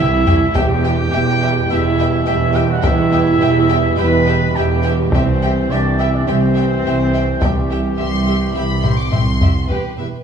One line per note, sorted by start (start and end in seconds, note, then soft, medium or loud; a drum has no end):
0.00 0.49 C2 medium
0.00 0.39 G2 medium
0.00 0.39 E3 medium
0.00 0.41 G3 medium
0.00 0.54 E4 medium
0.00 0.41 G4 medium
0.00 0.56 E5 loud
0.27 0.36 G4 medium
0.27 0.36 E5 medium
0.27 0.35 G5 medium
0.27 taiko low medium
0.55 1.06 E1 medium
0.55 1.06 E2 medium
0.55 5.09 B2 medium
0.55 5.09 E3 medium
0.55 5.10 G3 medium
0.55 1.70 G4 medium
0.55 0.65 G4 medium
0.55 5.10 G4 medium
0.55 0.65 E5 medium
0.55 0.63 G5 medium
0.55 1.68 G5 loud
0.55 taiko medium
0.84 0.93 G4 medium
0.84 0.93 E5 medium
0.84 0.92 G5 medium
1.11 1.63 E1 medium
1.11 1.64 E2 medium
1.11 1.20 G4 medium
1.11 1.19 E5 medium
1.11 1.21 G5 medium
1.42 1.50 G4 medium
1.42 1.50 E5 medium
1.42 1.50 G5 medium
1.69 2.21 E1 medium
1.69 2.21 E2 medium
1.69 2.27 E4 medium
1.69 1.80 G4 medium
1.69 2.27 E5 medium
1.69 1.80 E5 medium
1.69 1.77 G5 medium
1.98 2.07 G4 medium
1.98 2.07 E5 medium
1.98 2.06 G5 soft
2.26 2.77 E1 medium
2.26 2.78 E2 medium
2.26 2.56 E4 medium
2.26 2.34 G4 medium
2.26 2.34 E5 soft
2.26 2.58 E5 medium
2.26 2.34 G5 medium
2.54 2.62 G4 medium
2.54 2.71 G4 medium
2.54 2.62 E5 medium
2.54 2.63 G5 medium
2.54 2.70 G5 medium
2.70 2.84 F#4 medium
2.70 2.86 F#5 medium
2.82 3.35 E1 medium
2.82 3.35 E2 medium
2.82 3.99 E4 medium
2.82 2.90 G4 medium
2.82 2.90 E5 medium
2.82 3.98 E5 loud
2.82 2.91 G5 medium
2.82 taiko medium
3.12 3.20 G4 medium
3.12 3.20 E5 medium
3.12 3.21 G5 soft
3.40 3.92 E1 medium
3.40 3.93 E2 medium
3.40 3.48 G4 medium
3.40 3.48 E5 medium
3.40 3.50 G5 medium
3.69 3.77 G4 medium
3.69 3.77 E5 medium
3.69 3.77 G5 medium
3.98 4.49 E1 medium
3.98 4.50 E2 medium
3.98 4.06 G4 medium
3.98 4.56 B4 medium
3.98 4.06 E5 medium
3.98 4.06 G5 medium
3.98 4.58 B5 loud
4.27 4.35 G4 medium
4.27 4.35 E5 medium
4.27 4.35 G5 medium
4.55 5.07 E1 medium
4.55 5.07 E2 medium
4.55 5.12 G4 medium
4.55 4.66 G4 medium
4.55 4.65 E5 medium
4.55 4.63 G5 soft
4.55 4.93 G5 medium
4.84 4.93 G4 medium
4.84 4.93 E5 soft
4.84 4.92 G5 medium
5.10 5.63 C2 medium
5.10 5.64 C2 medium
5.10 9.41 C3 medium
5.10 9.36 E3 medium
5.10 9.37 G3 medium
5.10 5.70 C4 medium
5.10 9.38 G4 medium
5.10 5.72 C5 medium
5.10 5.22 E5 medium
5.10 taiko medium
5.14 5.23 G4 medium
5.14 5.22 G5 medium
5.42 5.50 G4 soft
5.42 5.51 E5 soft
5.42 5.50 G5 medium
5.70 6.21 C2 medium
5.70 5.99 D4 medium
5.70 5.79 G4 medium
5.70 6.01 D5 medium
5.70 5.78 E5 medium
5.70 5.80 G5 medium
5.98 6.13 E4 medium
5.98 6.07 G4 soft
5.98 6.07 E5 soft
5.98 6.16 E5 medium
5.98 6.08 G5 soft
6.13 6.28 D4 medium
6.13 6.29 D5 medium
6.27 6.78 C2 medium
6.27 7.41 C4 medium
6.27 6.36 G4 medium
6.27 7.42 C5 medium
6.27 6.35 E5 soft
6.27 6.36 G5 soft
6.54 6.63 G4 soft
6.54 6.62 E5 soft
6.54 6.65 G5 soft
6.85 7.35 C2 medium
6.85 6.93 G4 soft
6.85 6.94 E5 soft
6.85 6.95 G5 soft
7.13 7.21 G4 soft
7.13 7.21 E5 soft
7.13 7.22 G5 soft
7.41 7.92 C2 medium
7.41 7.93 C2 medium
7.41 9.42 G3 medium
7.41 7.49 G4 soft
7.41 9.38 G4 medium
7.41 7.49 E5 soft
7.41 7.51 G5 soft
7.41 taiko medium
7.70 7.78 G4 soft
7.70 7.78 E5 soft
7.70 7.79 G5 soft
7.98 8.49 C2 medium
7.98 8.50 C2 medium
7.98 8.06 G4 soft
7.98 8.06 E5 soft
7.98 8.53 C6 medium
8.27 8.35 G4 soft
8.27 8.35 E5 soft
8.55 9.07 C2 medium
8.55 8.63 G4 soft
8.55 8.63 E5 soft
8.55 8.84 B5 medium
8.83 8.91 G4 soft
8.83 8.91 E5 soft
8.83 8.99 C6 soft
8.83 taiko low-mid medium
8.99 9.13 D6 medium
9.11 9.63 C2 soft
9.11 9.64 C2 medium
9.11 9.20 G4 soft
9.11 9.19 E5 soft
9.11 9.68 C6 medium
9.11 taiko low-mid medium
9.41 9.50 G4 soft
9.41 9.49 E5 soft
9.41 taiko low medium
9.69 9.77 E1 soft
9.69 9.79 E2 soft
9.69 10.23 G3 soft
9.69 9.96 G4 soft
9.69 9.97 G4 soft
9.69 9.96 B4 soft
9.69 10.23 B4 soft
9.69 taiko soft
9.98 10.06 E1 soft
9.98 10.07 E2 soft
9.98 10.08 G4 soft
9.98 10.06 B4 soft
9.98 10.06 E5 soft